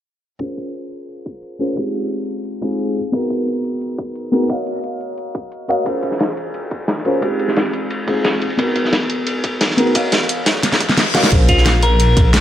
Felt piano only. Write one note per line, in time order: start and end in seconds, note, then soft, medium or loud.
0.39 1.57 C#4 medium
0.39 1.58 F4 medium
0.39 1.58 G#4 medium
0.39 1.58 A#4 medium
0.39 1.59 C5 medium
1.59 1.67 C#4 medium
1.59 1.67 F4 medium
1.59 1.67 G#4 medium
1.59 1.68 A#4 medium
1.59 1.68 C5 medium
1.75 2.59 G#3 medium
1.75 2.61 F4 medium
1.75 2.61 G4 medium
2.61 2.95 G#3 medium
2.61 2.95 C4 medium
2.61 2.95 D#4 medium
2.61 2.95 F4 medium
2.61 2.96 G#4 medium
3.12 4.30 B3 medium
3.12 4.30 D#4 medium
3.12 4.31 F#4 medium
3.12 4.31 G#4 medium
3.12 4.31 A#4 medium
4.32 4.40 B3 medium
4.32 4.40 D#4 medium
4.32 4.40 F#4 medium
4.32 4.40 G#4 medium
4.32 4.40 A#4 medium
4.48 5.32 F#4 medium
4.48 5.33 A#4 medium
4.48 5.33 C#5 medium
4.48 5.33 D#5 medium
4.48 5.34 F5 medium
5.68 5.84 F#4 medium
5.68 5.84 A#4 medium
5.68 5.84 C#5 medium
5.68 5.84 D#5 medium
5.68 5.84 F5 medium
5.84 7.02 C#4 medium
5.84 7.03 F4 medium
5.84 7.03 G#4 medium
5.84 7.04 A#4 medium
5.84 7.04 C5 medium
7.05 7.12 C#4 medium
7.05 7.13 F4 medium
7.05 7.13 G#4 medium
7.05 7.13 A#4 medium
7.05 7.13 C5 medium
7.21 8.05 G#3 medium
7.21 8.05 C4 medium
7.21 8.06 D#4 medium
7.21 8.06 F4 medium
7.21 8.06 G4 medium
8.07 8.40 G#3 medium
8.07 8.40 C4 medium
8.07 8.41 D#4 medium
8.07 8.41 F4 medium
8.07 8.41 G#4 medium
8.57 9.75 B3 medium
8.57 9.76 D#4 medium
8.57 9.76 F#4 medium
8.57 9.76 G#4 medium
8.57 9.77 A#4 medium
9.77 9.85 B3 medium
9.77 9.85 D#4 medium
9.77 9.85 F#4 medium
9.77 9.86 G#4 medium
9.77 9.86 A#4 medium
9.94 10.78 F#4 medium
9.94 10.78 A#4 medium
9.94 10.78 C#5 medium
9.94 10.79 D#5 medium
9.94 10.79 F5 medium
11.14 11.29 F#4 medium
11.14 11.29 A#4 medium
11.14 11.29 C#5 medium
11.14 11.30 D#5 medium
11.14 11.30 F5 medium
11.30 12.40 C#4 medium
11.30 12.40 G#4 medium
11.30 12.40 A#4 medium
11.30 12.40 C5 medium